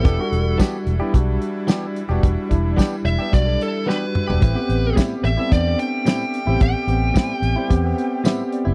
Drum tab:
HH |x-x-x-x-x-x-x-x-|x-x-x-x-x-x-----|x-x-x-x-x-x-x-x-|x-x-x-x-x-x-x-x-|
TB |----x-------x---|----x-----------|----x-------x---|----x-------x---|
SD |----o-------o---|----o-------o---|----o-------o---|----o-------o---|
T2 |----------------|--------------o-|----------------|----------------|
FT |----------------|---------------o|----------------|----------------|
BD |o---o---o-------|o-o-o---o-------|o---o---o-------|o---o---o-------|